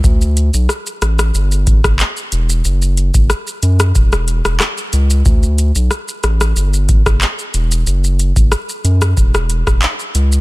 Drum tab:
HH |--x---x---x---x-|--x---x---x---x-|--x---x---x---x-|--x---x---x---x-|
SH |xxxxxxxxxxxxxxxx|xxxxxxxxxxxxxxxx|xxxxxxxxxxxxxxxx|xxxxxxxxxxxxxxxx|
CP |------------x---|------------x---|------------x---|------------x---|
SD |----r-rr---r----|----r--r-r-rr---|----r-rr---r----|----r--r-r-r----|
BD |o---------oo----|---o----o-------|o---------oo----|---o----o--o----|